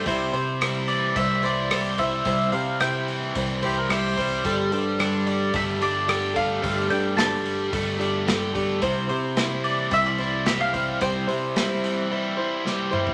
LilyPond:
<<
  \new Staff \with { instrumentName = "Mandolin" } { \time 4/4 \key c \mixolydian \tempo 4 = 110 r8 c''4 d''8 e''8 d''4 e''8~ | e''8 f''8 g''2 r4 | r8 c''4 d''8 e''8 d''4 f''8~ | f''8 g''8 a''2 r4 |
r8 c''4 d''8 e''16 d''8. e''16 f''8. | g''2.~ g''8 r8 | }
  \new Staff \with { instrumentName = "Harmonica" } { \time 4/4 \key c \mixolydian c''8 r2. r8 | r2 r8 g'16 bes'16 c''4~ | c''16 r2. r8. | r1 |
r1 | r1 | }
  \new Staff \with { instrumentName = "Steel-string acoustic guitar" } { \time 4/4 \key c \mixolydian <c g c' e' c''>8 <c' e' c''>8 <c g c' e' c''>4 <g c' e' c''>8 <c' e' c''>8 <c g c' e' c''>8 <c' e' c''>8 | <c g c' e' c''>8 <c' e' c''>8 <c g c' e' c''>4 <g c' e' c''>8 <c' e' c''>8 <c g c' e' c''>8 <c' e' c''>8 | <g, d g d' g' a'>8 <g d' g' a'>8 <g, d g d' g' a'>4 <g d' g' a'>8 <g d' g' a'>8 <g, d g d' g' a'>8 <g d' g' a'>8 | <g, d g d' g' a'>8 <g d' g' a'>8 <g, d g d' g' a'>4 <g d' g' a'>8 <g d' g' a'>8 <g, d g d' g' a'>8 <g d' g' a'>8 |
<c g c' e' c''>8 <c' e' c''>8 <c g c' e' c''>4 <g c' e' c''>8 <c' e' c''>8 <c g c' e' c''>8 <c' e' c''>8 | <c g c' e' c''>8 <c' e' c''>8 <c g c' e' c''>4 <g c' e' c''>8 <c' e' c''>8 <c g c' e' c''>8 <c' e' c''>8 | }
  \new Staff \with { instrumentName = "Overdriven electric guitar" } { \time 4/4 \key c \mixolydian c4 e'8 e8 g8 e'8 g'8 g8 | c4 e'8 e8 g8 e'8 g'8 g8 | g4 d'8 g8 a8 d'8 g'8 a8 | g4 d'8 g8 a8 d'8 g'8 a8 |
c4 e'8 e8 g8 e'8 g'8 g8 | c4 e'8 e8 g8 e'8 g'8 g8 | }
  \new Staff \with { instrumentName = "Picked electric bass" } { \clef bass \time 4/4 \key c \mixolydian c,8 c4. c,2 | c,8 c4. c,2 | g,,8 g,4. g,,2 | g,,8 g,4. g,,2 |
c,8 c4. c,2 | c,8 c4. r2 | }
  \new DrumStaff \with { instrumentName = "Drums" } \drummode { \time 4/4 <hho bd>8 hho8 <hho ss>8 hho8 <hho bd>8 hho8 <hho ss>8 <hho bd>8 | <hho bd>8 hho8 <hho ss>8 hho8 <hho bd>8 <hho bd>8 <hho ss>8 <hho bd>8 | <hho bd>8 hho8 <hho ss>8 hho8 <hho bd>8 hho8 <hho ss>8 <hho bd>8 | <hho bd>8 hho8 <hho sn>8 hho8 <hho bd>8 hho8 <hho sn>8 <hho bd>8 |
<hho bd>8 hho8 <hho sn>8 hho8 <hho bd>8 hho8 <hho sn>8 <hho bd>8 | <hho bd>8 hho8 <hho sn>8 hho8 r4 sn8 toml16 tomfh16 | }
>>